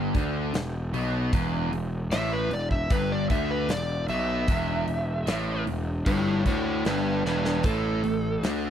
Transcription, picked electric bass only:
Already playing: G1
0.15 D2
0.54 E1
0.93 B1
1.33 E1
1.72 E1
2.11 A1
2.50 E1
2.91 G1
3.30 D2
3.69 E1
4.09 B1
4.48 E1
4.88 E1
5.27 A1
5.67 E1
6.06 G1
6.46 D2
6.86 G1
7.25 E1
7.64 A1
8.04 A1
8.44 D2

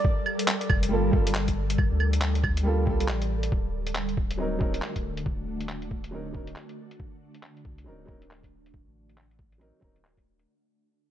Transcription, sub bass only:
0.70 F1
0.92 G1
1.13 G1
1.91 D2
2.87 C2
3.09 A1
3.52 D1
4.96 D1
5.26 D1
7.65 C2
7.86 D1
8.09 D1
8.87 A1
9.82 D1

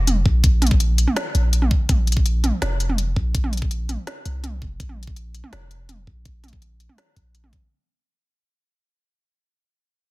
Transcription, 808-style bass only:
Already playing: F1
0.26 A#1
0.44 A#1
1.35 A#1
1.89 A#1
2.62 F1
3.16 A#1
3.35 A#1
4.25 C2
4.62 F1
4.80 A#1
5.53 F1
6.07 A#1
6.25 A#1
7.16 A#1

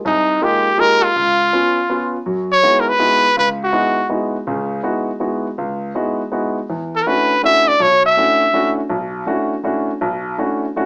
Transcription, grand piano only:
0.05 C2
0.41 G#3 A#3 D#4 F4 G4
0.78 G#3 A#3 D#4 F4 G4
1.16 C#2
1.53 B3 C#4 F4
1.90 B3 C#4 F4
2.26 F#2 F#3
2.63 G#3 B3 D#4 E4 F#4
2.99 G#3 B3 D#4 E4 F#4
3.36 C#2
3.72 G#3 B3 D#4 E4 F#4
4.09 G#3 B3 D#4 E4 F#4
4.47 C#2 C#3
4.83 G#3 B3 D#4 E4 F#4
5.20 G#3 B3 D#4 E4 F#4
5.58 C#2
5.95 G#3 B3 D#4 E4 F#4
6.32 G#3 B3 D#4 E4 F#4
6.69 E2 E3
7.06 A3 C#4 D4 E4 F#4
7.43 A3 C#4 D4 E4 F#4
7.80 B1
8.17 A3 C#4 D4 E4 F#4
8.53 A3 C#4 D4 E4 F#4
8.89 B1
9.26 A3 C#4 D4 E4 F#4
9.64 A3 C#4 D4 E4 F#4
10.01 B1
10.38 A3 C#4 D4 E4 F#4
10.76 A3 C#4 D4 E4 F#4

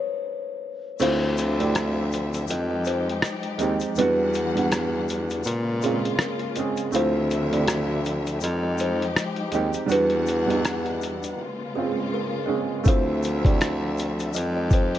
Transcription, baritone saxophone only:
1.01 D2
2.48 F2
3.60 D#2
3.96 E2
5.45 A#2
6.93 D2
8.42 F2
9.53 D#2
9.90 E2
12.86 D2
14.35 F2

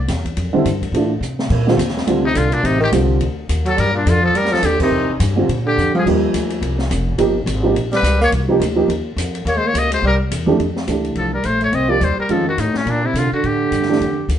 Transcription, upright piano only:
0.53 D3 G3 C4 E4
0.94 E3 A3 D4 F4
1.67 D3 G3 C4 F4
2.07 D3 G3 C4 F4
2.92 D3 G3 C4 F4
5.36 D3 G3 C4 F4
6.06 F3 A#3 D#4 G4
7.18 F3 A#3 D#4 G4
7.63 F3 A#3 D#4 G4
8.48 F3 A#3 D#4 G4
8.76 F3 A#3 D#4 G4
10.46 F2 E3 A3 D4 G4
10.87 E3 A3 D4 G4
11.88 F3 A#3 D#4 G4
12.29 D#3 G#3 C#4 F4
13.89 E3 A3 D4 G4

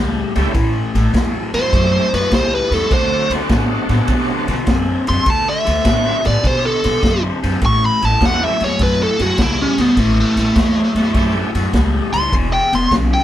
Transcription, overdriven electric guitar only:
Already playing: A2 G3
0.36 A2 G3
0.54 A2 E3
0.94 A2 E3
1.13 A2 F#3
1.55 A2 F#3
1.74 A2 F#3
2.13 A2 F#3
2.32 A2 G3
2.71 A2 G3
2.90 D3 A3
3.31 D3 A3
3.49 D3 B3
3.90 D3 B3
4.09 D3 B3
4.50 D3 B3
4.68 D3 C4
5.07 D3 C4
5.26 D3 A3
5.65 D3 A3
5.85 D3 B3
6.24 D3 B3
6.43 D3 B3
6.84 D3 B3
7.01 D3 C4
7.43 D3 C4
7.62 A2 E3
8.02 A2 E3
8.21 A2 F#3
8.60 A2 F#3
8.80 A2 F#3
9.19 A2 F#3
9.38 A2 G3
9.78 A2 G3
9.98 A2 E3
10.38 A2 E3
10.56 A2 F#3
10.97 A2 F#3
11.16 A2 F#3
11.55 A2 F#3
11.75 A2 G3
12.15 A2 G3
12.32 E2 B2
12.72 E2 B2
12.92 E2 C#3

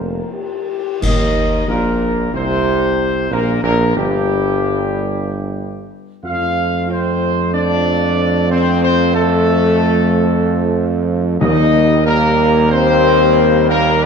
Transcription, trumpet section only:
1.02 D#5
1.67 A#4
2.33 C5
3.31 A#4
3.62 A#4
3.96 G4
6.24 F5
6.90 C5
7.53 D5
8.50 C5
8.82 C5
9.14 A4
11.41 D#5
12.06 A#4
12.70 C5
13.68 A#4
14.02 D#5

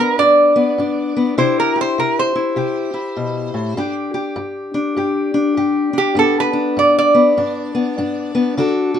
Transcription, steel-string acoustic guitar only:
Already playing: G2 B3 D4 B4
0.18 G2 D4
0.56 B3
0.78 G2 D4
1.17 B3
1.38 C3 E4 G4
1.76 G4
1.98 C3
2.36 E4
2.56 C3 G4
2.94 E4
3.17 B2
3.54 A2
3.77 G2 D4 G4
4.14 G4
4.36 G2
4.74 D4
4.96 G2 G4
5.34 D4
5.57 G2 G4
5.93 D4
6.15 G2 B3 D4
6.53 D4
6.77 G2
7.15 B3
7.37 G2 D4
7.75 B3
7.98 G2 D4
8.35 B3
8.57 D3 D4 F#4 A4
8.94 F#4

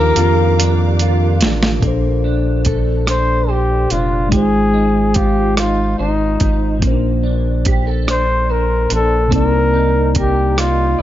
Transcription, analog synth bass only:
Already playing: D#2
0.17 F2
1.42 A1
1.83 A#1
3.92 F1
4.33 G#1
6.00 G#1
6.41 G#1
6.83 A#1
8.92 A#1
9.33 C2

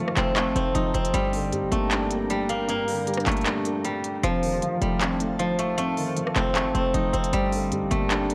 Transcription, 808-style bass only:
0.17 F1
0.47 G1
0.56 F1
0.75 F1
0.94 F1
1.14 G1
1.52 G2
1.63 G1
1.72 G1
3.27 G1
4.23 F1
4.82 F1
6.36 F1
6.66 G1
6.75 F1
6.94 F1
7.14 F1
7.33 G1
7.72 G2
7.82 G1
7.91 G1

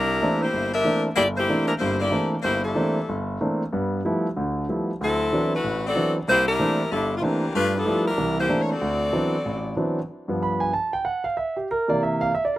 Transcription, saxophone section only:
Already playing: G3 D4 E4 A#4
0.42 A#3 E4 G4 C5
0.74 D4 G4 A#4 E5
1.16 A#3 E4 G4 D5
1.37 A#3 E4 G4 C5
1.67 G3 D4 E4 A#4
1.79 A#3 E4 G4 C5
1.99 A#3 E4 G4 D5
2.42 A#3 E4 G4 C5
2.64 G3 D4 E4 A4
5.03 F#3 C4 E4 A4
5.55 A3 E4 F#4 B4
5.86 C4 F#4 A4 D5
6.29 A#3 E4 G4 C5
6.48 G3 D4 E4 A#4
6.92 G3 D4 E4 A4
7.18 F4
7.24 E3 A#3 D4 G4
7.55 A3 D4 F4 B4
7.76 F3 B3 D4 A4
8.07 G3 D4 E4 A#4
8.38 A#3 E4 G4 C5
8.62 C#5
8.71 C4 F#4 A4 D5

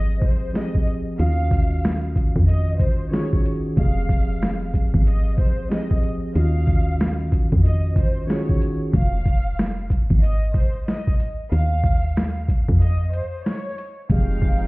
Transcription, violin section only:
Already playing: D#5
0.22 C5
0.55 D#5
1.19 F5
2.48 D#5
2.78 C5
3.11 C#5
3.78 F5
5.07 D#5
5.39 C5
5.72 D#5
6.35 F5
7.65 D#5
7.98 C5
8.29 C#5
8.95 F5
10.22 D#5
10.55 C5
10.87 D#5
11.51 F5
12.80 D#5
13.12 C5
13.44 C#5
14.11 F5

